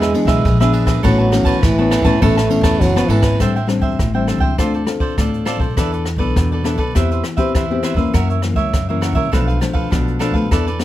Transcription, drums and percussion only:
0.02 cross-stick
0.14 ride
0.28 kick, cross-stick, ride
0.45 kick, ride
0.61 cross-stick
0.73 ride
0.87 kick, cross-stick, ride
1.04 kick, ride
1.32 cross-stick, ride
1.46 kick, ride
1.63 kick, cross-stick, ride
1.91 cross-stick, ride
2.05 kick, ride
2.22 kick, ride
2.38 cross-stick
2.50 ride
2.64 kick, cross-stick, ride
2.81 kick, ride
2.97 cross-stick
3.09 ride
3.22 kick, cross-stick, ride
3.40 kick, cross-stick, closed hi-hat
3.56 closed hi-hat
3.68 cross-stick, closed hi-hat
3.82 kick
3.99 kick, cross-stick, closed hi-hat
4.28 cross-stick, closed hi-hat
4.41 kick
4.58 kick, cross-stick, closed hi-hat
4.74 closed hi-hat
4.87 cross-stick, closed hi-hat
5.00 kick
5.18 kick, cross-stick, closed hi-hat
5.34 closed hi-hat
5.46 cross-stick, closed hi-hat
5.60 kick
5.77 kick, cross-stick, closed hi-hat
5.93 closed hi-hat
6.05 cross-stick, closed hi-hat
6.19 kick
6.36 kick, cross-stick, closed hi-hat
6.65 cross-stick, closed hi-hat
6.78 kick, closed hi-hat
6.95 kick, cross-stick, closed hi-hat
7.11 closed hi-hat
7.24 cross-stick, closed hi-hat
7.37 kick, closed hi-hat
7.55 kick, cross-stick, closed hi-hat
7.83 cross-stick, closed hi-hat
7.97 kick
8.14 kick, cross-stick, closed hi-hat
8.30 closed hi-hat
8.42 cross-stick, closed hi-hat
8.56 kick
8.73 kick, cross-stick, closed hi-hat
9.02 cross-stick, closed hi-hat
9.15 kick
9.33 kick, cross-stick, closed hi-hat
9.49 closed hi-hat
9.61 cross-stick, closed hi-hat
9.75 kick
9.92 kick, cross-stick, closed hi-hat
10.08 closed hi-hat
10.20 cross-stick, closed hi-hat
10.34 kick
10.51 kick, cross-stick, closed hi-hat
10.67 closed hi-hat
10.79 cross-stick, closed hi-hat

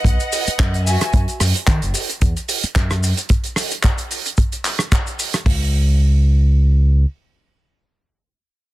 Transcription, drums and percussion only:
0.04 kick, closed hi-hat, shaker
0.20 closed hi-hat, shaker
0.32 open hi-hat, shaker
0.47 closed hi-hat, shaker
0.60 kick, clap, shaker
0.74 closed hi-hat, shaker
0.87 open hi-hat, shaker
1.01 cross-stick, closed hi-hat, shaker
1.13 kick, closed hi-hat, shaker
1.28 closed hi-hat, shaker
1.40 cross-stick, open hi-hat, shaker
1.55 closed hi-hat, shaker
1.67 kick, clap, closed hi-hat, shaker
1.82 closed hi-hat, shaker
1.94 open hi-hat, shaker
2.09 closed hi-hat, shaker
2.21 kick, closed hi-hat, shaker
2.37 closed hi-hat, shaker
2.49 open hi-hat, shaker
2.63 closed hi-hat, shaker
2.76 kick, clap, closed hi-hat, shaker
2.90 cross-stick, closed hi-hat, shaker
3.03 open hi-hat, shaker
3.17 closed hi-hat, shaker
3.29 kick, closed hi-hat, shaker
3.44 closed hi-hat, shaker
3.56 cross-stick, open hi-hat, shaker
3.71 closed hi-hat, shaker
3.83 kick, clap, closed hi-hat, shaker
3.98 closed hi-hat, shaker
4.11 open hi-hat, shaker
4.26 closed hi-hat, shaker
4.37 kick, closed hi-hat, shaker
4.52 closed hi-hat, shaker
4.64 clap, open hi-hat, shaker
4.79 cross-stick, closed hi-hat, shaker
4.92 kick, clap, closed hi-hat, shaker
5.07 closed hi-hat, shaker
5.19 open hi-hat, shaker
5.34 cross-stick, closed hi-hat, shaker
5.46 kick, open hi-hat

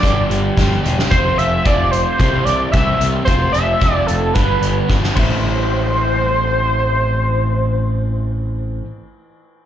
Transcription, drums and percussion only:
0.03 kick, closed hi-hat
0.31 closed hi-hat
0.57 kick, snare, closed hi-hat
0.85 closed hi-hat
0.99 snare
1.11 kick, closed hi-hat
1.39 closed hi-hat
1.65 kick, closed hi-hat
1.93 closed hi-hat
2.19 kick, closed hi-hat
2.46 closed hi-hat
2.73 kick, closed hi-hat
3.01 closed hi-hat
3.28 kick, closed hi-hat
3.54 closed hi-hat
3.81 kick, closed hi-hat
4.08 closed hi-hat
4.35 kick, closed hi-hat
4.62 closed hi-hat
4.90 kick, snare
5.03 snare
5.17 kick, ride

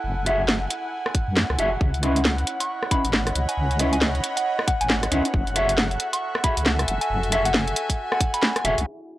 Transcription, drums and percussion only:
0.26 cross-stick, closed hi-hat
0.48 snare
0.70 closed hi-hat
1.06 cross-stick
1.15 kick, closed hi-hat
1.37 snare
1.50 cross-stick
1.58 closed hi-hat
1.81 kick
1.94 closed hi-hat
2.03 cross-stick, closed hi-hat
2.16 closed hi-hat
2.25 snare
2.38 closed hi-hat
2.47 closed hi-hat
2.60 closed hi-hat
2.82 cross-stick
2.91 kick, closed hi-hat
3.04 closed hi-hat
3.13 snare
3.27 cross-stick, closed hi-hat
3.35 closed hi-hat
3.49 closed hi-hat
3.71 closed hi-hat
3.79 cross-stick, closed hi-hat
3.93 closed hi-hat
4.01 snare
4.15 closed hi-hat
4.24 closed hi-hat
4.37 closed hi-hat
4.59 cross-stick
4.68 kick, closed hi-hat
4.81 closed hi-hat
4.90 snare
5.03 cross-stick, closed hi-hat
5.12 closed hi-hat
5.25 closed hi-hat
5.34 kick
5.47 closed hi-hat
5.56 cross-stick, closed hi-hat
5.69 closed hi-hat
5.78 snare
5.91 closed hi-hat
6.00 closed hi-hat
6.13 closed hi-hat
6.35 cross-stick
6.44 kick, closed hi-hat
6.57 closed hi-hat
6.66 snare
6.79 cross-stick, closed hi-hat
6.88 closed hi-hat
7.01 closed hi-hat
7.23 closed hi-hat
7.32 cross-stick, closed hi-hat
7.45 closed hi-hat
7.54 snare
7.68 closed hi-hat
7.76 closed hi-hat
7.90 kick, closed hi-hat
8.12 cross-stick
8.20 kick, closed hi-hat
8.34 closed hi-hat
8.43 snare
8.56 cross-stick, closed hi-hat
8.65 closed hi-hat
8.78 closed hi-hat
9.00 closed hi-hat

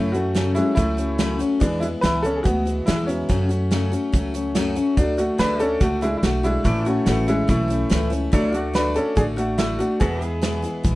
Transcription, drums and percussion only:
0.14 closed hi-hat
0.35 snare, closed hi-hat
0.56 closed hi-hat
0.77 kick, closed hi-hat
0.98 closed hi-hat
1.19 snare, closed hi-hat
1.40 closed hi-hat
1.61 kick, closed hi-hat
1.83 closed hi-hat
2.04 snare, closed hi-hat
2.25 closed hi-hat
2.45 kick, closed hi-hat
2.67 closed hi-hat
2.88 snare, closed hi-hat
3.09 closed hi-hat
3.30 kick, closed hi-hat
3.51 closed hi-hat
3.72 snare, closed hi-hat
3.93 closed hi-hat
4.14 kick, closed hi-hat
4.35 closed hi-hat
4.55 snare, closed hi-hat
4.76 closed hi-hat
4.97 kick, closed hi-hat
5.18 closed hi-hat
5.39 snare, closed hi-hat
5.60 closed hi-hat
5.81 kick, closed hi-hat
6.02 closed hi-hat
6.23 snare, closed hi-hat
6.44 closed hi-hat
6.65 kick, closed hi-hat
6.86 closed hi-hat
7.07 snare, closed hi-hat
7.28 closed hi-hat
7.49 kick, closed hi-hat
7.70 closed hi-hat
7.91 snare, closed hi-hat
8.13 closed hi-hat
8.33 kick, closed hi-hat
8.54 closed hi-hat
8.75 snare, closed hi-hat
8.96 closed hi-hat
9.17 kick, closed hi-hat
9.38 closed hi-hat
9.59 snare, closed hi-hat
9.80 closed hi-hat
10.01 kick, closed hi-hat
10.22 closed hi-hat
10.43 snare, closed hi-hat
10.64 closed hi-hat
10.85 kick, closed hi-hat

